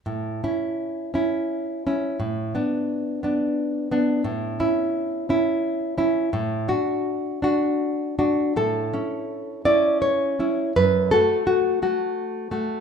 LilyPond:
\new Staff \with { instrumentName = "Nylon-string guitar" } { \time 3/4 \key a \major \tempo 4 = 85 << { r2. | r2. | r2. | r2. |
a'4. d''8 cis''4 | b'8 a'8 fis'4. r8 | } \\ { a,8 <cis' e'>4 <cis' e'>4 <cis' e'>8 | a,8 <b d'>4 <b d'>4 <b d'>8 | a,8 <cis' e'>4 <cis' e'>4 <cis' e'>8 | a,8 <d' fis'>4 <d' fis'>4 <d' fis'>8 |
a,8 <cis' e'>4 <cis' e'>4 <cis' e'>8 | fis,8 <a fis'>4 <a fis'>4 <a fis'>8 | } >> }